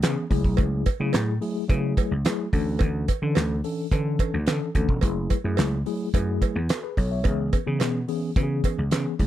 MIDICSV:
0, 0, Header, 1, 4, 480
1, 0, Start_track
1, 0, Key_signature, 3, "minor"
1, 0, Tempo, 555556
1, 505, Time_signature, 4, 2, 24, 8
1, 8008, End_track
2, 0, Start_track
2, 0, Title_t, "Tine electric piano"
2, 0, Program_c, 0, 4
2, 19, Note_on_c, 0, 52, 84
2, 23, Note_on_c, 0, 59, 71
2, 25, Note_on_c, 0, 61, 71
2, 27, Note_on_c, 0, 68, 93
2, 208, Note_off_c, 0, 52, 0
2, 210, Note_off_c, 0, 59, 0
2, 211, Note_off_c, 0, 61, 0
2, 212, Note_off_c, 0, 68, 0
2, 259, Note_on_c, 0, 54, 89
2, 262, Note_on_c, 0, 57, 77
2, 264, Note_on_c, 0, 64, 78
2, 267, Note_on_c, 0, 68, 92
2, 742, Note_off_c, 0, 54, 0
2, 743, Note_off_c, 0, 57, 0
2, 744, Note_off_c, 0, 64, 0
2, 746, Note_off_c, 0, 68, 0
2, 862, Note_on_c, 0, 54, 85
2, 863, Note_on_c, 0, 57, 77
2, 865, Note_on_c, 0, 64, 79
2, 870, Note_on_c, 0, 68, 96
2, 1142, Note_off_c, 0, 54, 0
2, 1143, Note_off_c, 0, 57, 0
2, 1144, Note_off_c, 0, 64, 0
2, 1146, Note_off_c, 0, 68, 0
2, 1216, Note_on_c, 0, 54, 83
2, 1219, Note_on_c, 0, 57, 82
2, 1221, Note_on_c, 0, 64, 68
2, 1224, Note_on_c, 0, 68, 85
2, 1406, Note_off_c, 0, 54, 0
2, 1408, Note_off_c, 0, 57, 0
2, 1409, Note_off_c, 0, 64, 0
2, 1410, Note_off_c, 0, 68, 0
2, 1457, Note_on_c, 0, 54, 93
2, 1461, Note_on_c, 0, 57, 82
2, 1462, Note_on_c, 0, 64, 70
2, 1466, Note_on_c, 0, 68, 91
2, 1833, Note_off_c, 0, 54, 0
2, 1835, Note_off_c, 0, 57, 0
2, 1836, Note_off_c, 0, 64, 0
2, 1837, Note_off_c, 0, 68, 0
2, 1941, Note_on_c, 0, 54, 80
2, 1944, Note_on_c, 0, 57, 73
2, 1944, Note_on_c, 0, 64, 74
2, 1949, Note_on_c, 0, 68, 89
2, 2129, Note_off_c, 0, 54, 0
2, 2130, Note_off_c, 0, 57, 0
2, 2131, Note_off_c, 0, 64, 0
2, 2133, Note_off_c, 0, 68, 0
2, 2182, Note_on_c, 0, 52, 81
2, 2185, Note_on_c, 0, 61, 77
2, 2187, Note_on_c, 0, 62, 70
2, 2190, Note_on_c, 0, 69, 90
2, 2663, Note_off_c, 0, 52, 0
2, 2665, Note_off_c, 0, 61, 0
2, 2666, Note_off_c, 0, 62, 0
2, 2667, Note_off_c, 0, 69, 0
2, 2784, Note_on_c, 0, 52, 92
2, 2785, Note_on_c, 0, 61, 78
2, 2788, Note_on_c, 0, 62, 77
2, 2790, Note_on_c, 0, 69, 94
2, 3063, Note_off_c, 0, 52, 0
2, 3064, Note_off_c, 0, 61, 0
2, 3065, Note_off_c, 0, 62, 0
2, 3066, Note_off_c, 0, 69, 0
2, 3141, Note_on_c, 0, 52, 78
2, 3146, Note_on_c, 0, 61, 76
2, 3146, Note_on_c, 0, 62, 68
2, 3149, Note_on_c, 0, 69, 86
2, 3329, Note_off_c, 0, 52, 0
2, 3331, Note_off_c, 0, 61, 0
2, 3331, Note_off_c, 0, 62, 0
2, 3333, Note_off_c, 0, 69, 0
2, 3384, Note_on_c, 0, 52, 85
2, 3386, Note_on_c, 0, 61, 82
2, 3389, Note_on_c, 0, 62, 83
2, 3391, Note_on_c, 0, 69, 94
2, 3756, Note_off_c, 0, 52, 0
2, 3757, Note_off_c, 0, 61, 0
2, 3759, Note_off_c, 0, 62, 0
2, 3760, Note_off_c, 0, 69, 0
2, 3864, Note_on_c, 0, 52, 84
2, 3867, Note_on_c, 0, 61, 74
2, 3867, Note_on_c, 0, 62, 72
2, 3870, Note_on_c, 0, 69, 91
2, 4050, Note_off_c, 0, 52, 0
2, 4052, Note_off_c, 0, 61, 0
2, 4052, Note_off_c, 0, 62, 0
2, 4053, Note_off_c, 0, 69, 0
2, 4103, Note_on_c, 0, 52, 78
2, 4106, Note_on_c, 0, 61, 78
2, 4108, Note_on_c, 0, 62, 69
2, 4111, Note_on_c, 0, 69, 87
2, 4290, Note_off_c, 0, 52, 0
2, 4291, Note_off_c, 0, 61, 0
2, 4292, Note_off_c, 0, 62, 0
2, 4294, Note_off_c, 0, 69, 0
2, 4343, Note_on_c, 0, 54, 83
2, 4345, Note_on_c, 0, 57, 76
2, 4349, Note_on_c, 0, 64, 86
2, 4350, Note_on_c, 0, 68, 89
2, 4623, Note_off_c, 0, 54, 0
2, 4624, Note_off_c, 0, 57, 0
2, 4626, Note_off_c, 0, 64, 0
2, 4627, Note_off_c, 0, 68, 0
2, 4702, Note_on_c, 0, 54, 85
2, 4704, Note_on_c, 0, 57, 80
2, 4706, Note_on_c, 0, 64, 80
2, 4709, Note_on_c, 0, 68, 90
2, 4982, Note_off_c, 0, 54, 0
2, 4983, Note_off_c, 0, 57, 0
2, 4984, Note_off_c, 0, 64, 0
2, 4986, Note_off_c, 0, 68, 0
2, 5062, Note_on_c, 0, 54, 84
2, 5066, Note_on_c, 0, 57, 78
2, 5067, Note_on_c, 0, 64, 70
2, 5069, Note_on_c, 0, 68, 88
2, 5249, Note_off_c, 0, 54, 0
2, 5251, Note_off_c, 0, 57, 0
2, 5252, Note_off_c, 0, 64, 0
2, 5253, Note_off_c, 0, 68, 0
2, 5304, Note_on_c, 0, 54, 81
2, 5306, Note_on_c, 0, 57, 80
2, 5308, Note_on_c, 0, 64, 77
2, 5310, Note_on_c, 0, 68, 93
2, 5676, Note_off_c, 0, 54, 0
2, 5677, Note_off_c, 0, 57, 0
2, 5678, Note_off_c, 0, 64, 0
2, 5679, Note_off_c, 0, 68, 0
2, 5787, Note_on_c, 0, 69, 62
2, 5792, Note_on_c, 0, 66, 51
2, 5900, Note_off_c, 0, 69, 0
2, 5903, Note_off_c, 0, 66, 0
2, 5904, Note_on_c, 0, 71, 76
2, 5911, Note_on_c, 0, 68, 60
2, 6018, Note_off_c, 0, 71, 0
2, 6022, Note_off_c, 0, 68, 0
2, 6026, Note_on_c, 0, 73, 66
2, 6031, Note_on_c, 0, 69, 61
2, 6139, Note_off_c, 0, 73, 0
2, 6142, Note_off_c, 0, 69, 0
2, 6146, Note_on_c, 0, 76, 58
2, 6152, Note_on_c, 0, 73, 51
2, 6259, Note_on_c, 0, 52, 84
2, 6262, Note_on_c, 0, 59, 73
2, 6263, Note_on_c, 0, 61, 81
2, 6266, Note_on_c, 0, 68, 96
2, 6373, Note_off_c, 0, 76, 0
2, 6376, Note_off_c, 0, 73, 0
2, 6541, Note_off_c, 0, 52, 0
2, 6542, Note_off_c, 0, 59, 0
2, 6543, Note_off_c, 0, 61, 0
2, 6544, Note_off_c, 0, 68, 0
2, 6621, Note_on_c, 0, 52, 80
2, 6623, Note_on_c, 0, 59, 74
2, 6625, Note_on_c, 0, 61, 80
2, 6628, Note_on_c, 0, 68, 88
2, 6902, Note_off_c, 0, 52, 0
2, 6903, Note_off_c, 0, 59, 0
2, 6904, Note_off_c, 0, 61, 0
2, 6905, Note_off_c, 0, 68, 0
2, 6982, Note_on_c, 0, 52, 88
2, 6984, Note_on_c, 0, 59, 80
2, 6985, Note_on_c, 0, 61, 76
2, 6986, Note_on_c, 0, 68, 92
2, 7169, Note_off_c, 0, 52, 0
2, 7170, Note_off_c, 0, 59, 0
2, 7171, Note_off_c, 0, 61, 0
2, 7171, Note_off_c, 0, 68, 0
2, 7222, Note_on_c, 0, 52, 81
2, 7226, Note_on_c, 0, 59, 71
2, 7227, Note_on_c, 0, 61, 75
2, 7229, Note_on_c, 0, 66, 74
2, 7283, Note_off_c, 0, 66, 0
2, 7284, Note_on_c, 0, 68, 92
2, 7595, Note_off_c, 0, 52, 0
2, 7597, Note_off_c, 0, 59, 0
2, 7598, Note_off_c, 0, 61, 0
2, 7627, Note_off_c, 0, 68, 0
2, 7700, Note_on_c, 0, 52, 88
2, 7702, Note_on_c, 0, 59, 82
2, 7705, Note_on_c, 0, 61, 79
2, 7707, Note_on_c, 0, 68, 84
2, 7888, Note_off_c, 0, 52, 0
2, 7889, Note_off_c, 0, 59, 0
2, 7891, Note_off_c, 0, 61, 0
2, 7892, Note_off_c, 0, 68, 0
2, 7941, Note_on_c, 0, 54, 85
2, 7943, Note_on_c, 0, 57, 70
2, 7945, Note_on_c, 0, 64, 74
2, 7948, Note_on_c, 0, 68, 85
2, 8008, Note_off_c, 0, 54, 0
2, 8008, Note_off_c, 0, 57, 0
2, 8008, Note_off_c, 0, 64, 0
2, 8008, Note_off_c, 0, 68, 0
2, 8008, End_track
3, 0, Start_track
3, 0, Title_t, "Slap bass"
3, 0, Program_c, 1, 36
3, 24, Note_on_c, 1, 49, 91
3, 126, Note_off_c, 1, 49, 0
3, 266, Note_on_c, 1, 37, 90
3, 367, Note_off_c, 1, 37, 0
3, 384, Note_on_c, 1, 35, 93
3, 486, Note_off_c, 1, 35, 0
3, 504, Note_on_c, 1, 37, 93
3, 708, Note_off_c, 1, 37, 0
3, 865, Note_on_c, 1, 49, 103
3, 966, Note_off_c, 1, 49, 0
3, 986, Note_on_c, 1, 45, 98
3, 1189, Note_off_c, 1, 45, 0
3, 1465, Note_on_c, 1, 49, 102
3, 1668, Note_off_c, 1, 49, 0
3, 1826, Note_on_c, 1, 37, 90
3, 1927, Note_off_c, 1, 37, 0
3, 2184, Note_on_c, 1, 38, 102
3, 2388, Note_off_c, 1, 38, 0
3, 2425, Note_on_c, 1, 38, 100
3, 2628, Note_off_c, 1, 38, 0
3, 2783, Note_on_c, 1, 50, 85
3, 2885, Note_off_c, 1, 50, 0
3, 2904, Note_on_c, 1, 38, 91
3, 3108, Note_off_c, 1, 38, 0
3, 3382, Note_on_c, 1, 50, 93
3, 3587, Note_off_c, 1, 50, 0
3, 3748, Note_on_c, 1, 38, 91
3, 3848, Note_off_c, 1, 38, 0
3, 3862, Note_on_c, 1, 50, 89
3, 3965, Note_off_c, 1, 50, 0
3, 4103, Note_on_c, 1, 38, 87
3, 4206, Note_off_c, 1, 38, 0
3, 4224, Note_on_c, 1, 28, 88
3, 4343, Note_off_c, 1, 28, 0
3, 4343, Note_on_c, 1, 30, 103
3, 4548, Note_off_c, 1, 30, 0
3, 4704, Note_on_c, 1, 42, 83
3, 4806, Note_off_c, 1, 42, 0
3, 4823, Note_on_c, 1, 37, 93
3, 5027, Note_off_c, 1, 37, 0
3, 5305, Note_on_c, 1, 42, 86
3, 5509, Note_off_c, 1, 42, 0
3, 5664, Note_on_c, 1, 40, 90
3, 5766, Note_off_c, 1, 40, 0
3, 6025, Note_on_c, 1, 35, 88
3, 6228, Note_off_c, 1, 35, 0
3, 6265, Note_on_c, 1, 37, 111
3, 6469, Note_off_c, 1, 37, 0
3, 6626, Note_on_c, 1, 49, 83
3, 6748, Note_off_c, 1, 49, 0
3, 6748, Note_on_c, 1, 47, 101
3, 6950, Note_off_c, 1, 47, 0
3, 7226, Note_on_c, 1, 49, 88
3, 7429, Note_off_c, 1, 49, 0
3, 7589, Note_on_c, 1, 37, 90
3, 7689, Note_off_c, 1, 37, 0
3, 7712, Note_on_c, 1, 49, 87
3, 7811, Note_off_c, 1, 49, 0
3, 7945, Note_on_c, 1, 37, 96
3, 8008, Note_off_c, 1, 37, 0
3, 8008, End_track
4, 0, Start_track
4, 0, Title_t, "Drums"
4, 22, Note_on_c, 9, 42, 104
4, 30, Note_on_c, 9, 38, 125
4, 31, Note_on_c, 9, 56, 68
4, 39, Note_on_c, 9, 39, 100
4, 108, Note_off_c, 9, 42, 0
4, 116, Note_off_c, 9, 38, 0
4, 117, Note_off_c, 9, 56, 0
4, 125, Note_off_c, 9, 39, 0
4, 265, Note_on_c, 9, 36, 82
4, 265, Note_on_c, 9, 46, 57
4, 351, Note_off_c, 9, 36, 0
4, 352, Note_off_c, 9, 46, 0
4, 384, Note_on_c, 9, 36, 91
4, 470, Note_off_c, 9, 36, 0
4, 493, Note_on_c, 9, 56, 71
4, 503, Note_on_c, 9, 42, 86
4, 504, Note_on_c, 9, 36, 126
4, 579, Note_off_c, 9, 56, 0
4, 589, Note_off_c, 9, 42, 0
4, 591, Note_off_c, 9, 36, 0
4, 741, Note_on_c, 9, 42, 77
4, 745, Note_on_c, 9, 56, 65
4, 746, Note_on_c, 9, 36, 98
4, 828, Note_off_c, 9, 42, 0
4, 831, Note_off_c, 9, 56, 0
4, 832, Note_off_c, 9, 36, 0
4, 975, Note_on_c, 9, 56, 66
4, 982, Note_on_c, 9, 42, 87
4, 987, Note_on_c, 9, 38, 97
4, 996, Note_on_c, 9, 39, 83
4, 1062, Note_off_c, 9, 56, 0
4, 1069, Note_off_c, 9, 42, 0
4, 1073, Note_off_c, 9, 38, 0
4, 1083, Note_off_c, 9, 39, 0
4, 1225, Note_on_c, 9, 46, 64
4, 1312, Note_off_c, 9, 46, 0
4, 1464, Note_on_c, 9, 36, 114
4, 1468, Note_on_c, 9, 42, 96
4, 1472, Note_on_c, 9, 56, 64
4, 1551, Note_off_c, 9, 36, 0
4, 1554, Note_off_c, 9, 42, 0
4, 1559, Note_off_c, 9, 56, 0
4, 1704, Note_on_c, 9, 36, 96
4, 1706, Note_on_c, 9, 42, 73
4, 1711, Note_on_c, 9, 56, 71
4, 1790, Note_off_c, 9, 36, 0
4, 1792, Note_off_c, 9, 42, 0
4, 1797, Note_off_c, 9, 56, 0
4, 1943, Note_on_c, 9, 42, 98
4, 1949, Note_on_c, 9, 56, 66
4, 1951, Note_on_c, 9, 38, 106
4, 1960, Note_on_c, 9, 39, 86
4, 2029, Note_off_c, 9, 42, 0
4, 2036, Note_off_c, 9, 56, 0
4, 2037, Note_off_c, 9, 38, 0
4, 2047, Note_off_c, 9, 39, 0
4, 2185, Note_on_c, 9, 36, 81
4, 2186, Note_on_c, 9, 46, 57
4, 2271, Note_off_c, 9, 36, 0
4, 2273, Note_off_c, 9, 46, 0
4, 2411, Note_on_c, 9, 56, 72
4, 2424, Note_on_c, 9, 42, 90
4, 2425, Note_on_c, 9, 36, 126
4, 2497, Note_off_c, 9, 56, 0
4, 2510, Note_off_c, 9, 42, 0
4, 2511, Note_off_c, 9, 36, 0
4, 2663, Note_on_c, 9, 42, 82
4, 2665, Note_on_c, 9, 56, 60
4, 2666, Note_on_c, 9, 36, 87
4, 2750, Note_off_c, 9, 42, 0
4, 2752, Note_off_c, 9, 56, 0
4, 2753, Note_off_c, 9, 36, 0
4, 2897, Note_on_c, 9, 56, 68
4, 2904, Note_on_c, 9, 42, 81
4, 2908, Note_on_c, 9, 38, 94
4, 2917, Note_on_c, 9, 39, 71
4, 2983, Note_off_c, 9, 56, 0
4, 2990, Note_off_c, 9, 42, 0
4, 2995, Note_off_c, 9, 38, 0
4, 3004, Note_off_c, 9, 39, 0
4, 3146, Note_on_c, 9, 46, 69
4, 3233, Note_off_c, 9, 46, 0
4, 3383, Note_on_c, 9, 36, 107
4, 3386, Note_on_c, 9, 42, 92
4, 3392, Note_on_c, 9, 56, 60
4, 3469, Note_off_c, 9, 36, 0
4, 3472, Note_off_c, 9, 42, 0
4, 3478, Note_off_c, 9, 56, 0
4, 3622, Note_on_c, 9, 36, 90
4, 3623, Note_on_c, 9, 42, 66
4, 3629, Note_on_c, 9, 56, 73
4, 3708, Note_off_c, 9, 36, 0
4, 3710, Note_off_c, 9, 42, 0
4, 3716, Note_off_c, 9, 56, 0
4, 3858, Note_on_c, 9, 42, 104
4, 3866, Note_on_c, 9, 38, 116
4, 3869, Note_on_c, 9, 56, 76
4, 3876, Note_on_c, 9, 39, 86
4, 3945, Note_off_c, 9, 42, 0
4, 3953, Note_off_c, 9, 38, 0
4, 3955, Note_off_c, 9, 56, 0
4, 3962, Note_off_c, 9, 39, 0
4, 4103, Note_on_c, 9, 36, 78
4, 4104, Note_on_c, 9, 42, 55
4, 4189, Note_off_c, 9, 36, 0
4, 4190, Note_off_c, 9, 42, 0
4, 4222, Note_on_c, 9, 36, 88
4, 4309, Note_off_c, 9, 36, 0
4, 4331, Note_on_c, 9, 56, 66
4, 4342, Note_on_c, 9, 42, 96
4, 4343, Note_on_c, 9, 36, 127
4, 4418, Note_off_c, 9, 56, 0
4, 4428, Note_off_c, 9, 42, 0
4, 4429, Note_off_c, 9, 36, 0
4, 4580, Note_on_c, 9, 42, 79
4, 4581, Note_on_c, 9, 56, 59
4, 4585, Note_on_c, 9, 36, 88
4, 4667, Note_off_c, 9, 42, 0
4, 4668, Note_off_c, 9, 56, 0
4, 4671, Note_off_c, 9, 36, 0
4, 4813, Note_on_c, 9, 56, 68
4, 4823, Note_on_c, 9, 42, 90
4, 4828, Note_on_c, 9, 38, 97
4, 4837, Note_on_c, 9, 39, 78
4, 4900, Note_off_c, 9, 56, 0
4, 4909, Note_off_c, 9, 42, 0
4, 4914, Note_off_c, 9, 38, 0
4, 4923, Note_off_c, 9, 39, 0
4, 5064, Note_on_c, 9, 46, 66
4, 5150, Note_off_c, 9, 46, 0
4, 5303, Note_on_c, 9, 36, 111
4, 5307, Note_on_c, 9, 42, 94
4, 5309, Note_on_c, 9, 56, 65
4, 5390, Note_off_c, 9, 36, 0
4, 5394, Note_off_c, 9, 42, 0
4, 5396, Note_off_c, 9, 56, 0
4, 5543, Note_on_c, 9, 36, 88
4, 5545, Note_on_c, 9, 42, 60
4, 5551, Note_on_c, 9, 56, 65
4, 5629, Note_off_c, 9, 36, 0
4, 5631, Note_off_c, 9, 42, 0
4, 5637, Note_off_c, 9, 56, 0
4, 5782, Note_on_c, 9, 42, 110
4, 5789, Note_on_c, 9, 56, 77
4, 5791, Note_on_c, 9, 38, 121
4, 5800, Note_on_c, 9, 39, 93
4, 5869, Note_off_c, 9, 42, 0
4, 5876, Note_off_c, 9, 56, 0
4, 5877, Note_off_c, 9, 38, 0
4, 5886, Note_off_c, 9, 39, 0
4, 6024, Note_on_c, 9, 36, 76
4, 6026, Note_on_c, 9, 46, 59
4, 6111, Note_off_c, 9, 36, 0
4, 6112, Note_off_c, 9, 46, 0
4, 6255, Note_on_c, 9, 56, 68
4, 6262, Note_on_c, 9, 42, 90
4, 6264, Note_on_c, 9, 36, 125
4, 6342, Note_off_c, 9, 56, 0
4, 6349, Note_off_c, 9, 42, 0
4, 6351, Note_off_c, 9, 36, 0
4, 6503, Note_on_c, 9, 42, 74
4, 6505, Note_on_c, 9, 56, 63
4, 6506, Note_on_c, 9, 36, 99
4, 6590, Note_off_c, 9, 42, 0
4, 6592, Note_off_c, 9, 36, 0
4, 6592, Note_off_c, 9, 56, 0
4, 6738, Note_on_c, 9, 56, 68
4, 6744, Note_on_c, 9, 42, 96
4, 6748, Note_on_c, 9, 38, 93
4, 6758, Note_on_c, 9, 39, 74
4, 6825, Note_off_c, 9, 56, 0
4, 6830, Note_off_c, 9, 42, 0
4, 6835, Note_off_c, 9, 38, 0
4, 6844, Note_off_c, 9, 39, 0
4, 6985, Note_on_c, 9, 46, 62
4, 7071, Note_off_c, 9, 46, 0
4, 7224, Note_on_c, 9, 36, 121
4, 7227, Note_on_c, 9, 42, 97
4, 7233, Note_on_c, 9, 56, 65
4, 7310, Note_off_c, 9, 36, 0
4, 7313, Note_off_c, 9, 42, 0
4, 7320, Note_off_c, 9, 56, 0
4, 7463, Note_on_c, 9, 36, 89
4, 7465, Note_on_c, 9, 42, 70
4, 7474, Note_on_c, 9, 56, 69
4, 7550, Note_off_c, 9, 36, 0
4, 7551, Note_off_c, 9, 42, 0
4, 7560, Note_off_c, 9, 56, 0
4, 7701, Note_on_c, 9, 42, 109
4, 7709, Note_on_c, 9, 38, 105
4, 7710, Note_on_c, 9, 56, 67
4, 7719, Note_on_c, 9, 39, 92
4, 7788, Note_off_c, 9, 42, 0
4, 7796, Note_off_c, 9, 38, 0
4, 7797, Note_off_c, 9, 56, 0
4, 7805, Note_off_c, 9, 39, 0
4, 7944, Note_on_c, 9, 36, 79
4, 7945, Note_on_c, 9, 46, 68
4, 8008, Note_off_c, 9, 36, 0
4, 8008, Note_off_c, 9, 46, 0
4, 8008, End_track
0, 0, End_of_file